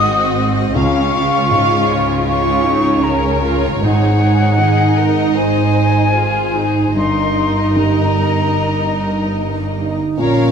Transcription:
Already playing: G#1 G#2 D#3 F#4 D#5 D#6
0.00 C4
0.38 C4
0.75 C#2 C#3 C#4 F4 F5 C#6
1.14 F4
1.50 G#2 F5
1.88 C#5
2.27 F4 C#5 C#6
2.67 D#4
3.04 C#4 A#4 A#5
3.43 F4
3.81 G#1 G#2 D#4 G#4 F#5
4.20 D#4
4.57 D#3 G#4 D#5
4.98 A#4
5.37 C5 G#5
6.15 F4 G#4 C5
6.56 D#4
6.95 G1 G2 D#4 A#4 D#5 C6
7.76 G3 A#5
9.78 D#4
10.18 A#1 A#2 A#3 C#4 A#4 C#5 F5

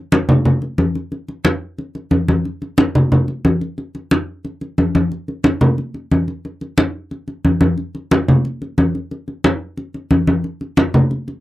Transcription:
0.12 high conga
0.29 high conga, low conga
0.45 high conga, low conga
0.62 high conga
0.78 high conga
0.95 high conga
1.12 high conga
1.28 high conga
1.45 high conga
1.78 high conga
1.95 high conga
2.11 high conga
2.28 high conga
2.45 high conga
2.62 high conga
2.78 high conga
2.95 high conga, low conga
3.12 high conga, low conga
3.28 high conga
3.45 high conga
3.61 high conga
3.78 high conga
3.95 high conga
4.11 high conga
4.45 high conga
4.61 high conga
4.78 high conga
4.95 high conga
5.12 high conga
5.28 high conga
5.44 high conga
5.61 high conga, low conga
5.78 high conga
5.94 high conga
6.11 high conga
6.28 high conga
6.45 high conga
6.61 high conga
6.78 high conga
7.11 high conga
7.28 high conga
7.45 high conga
7.61 high conga
7.78 high conga
7.95 high conga
8.11 high conga
8.28 high conga, low conga
8.45 high conga
8.62 high conga
8.78 high conga
8.95 high conga
9.11 high conga
9.28 high conga
9.44 high conga
9.77 high conga
9.94 high conga
10.11 high conga
10.27 high conga
10.44 high conga
10.61 high conga
10.77 high conga
10.94 high conga, low conga
11.11 high conga
11.28 high conga

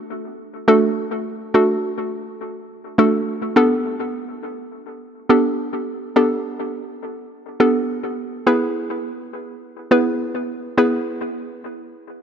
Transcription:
Already playing: A3 D4 F#4 A4
0.68 A3 D4 F#4 A4
1.54 A3 D4 F#4 A4
2.98 A3 D4 F#4 A4
3.56 B3 D4 G4 A4
5.29 B3 D4 G4 A4
6.16 B3 D4 G4 A4
7.60 B3 D4 G4 A4
8.47 B3 E4 G#4 B4
9.91 B3 E4 G#4 B4
10.78 B3 E4 G#4 B4

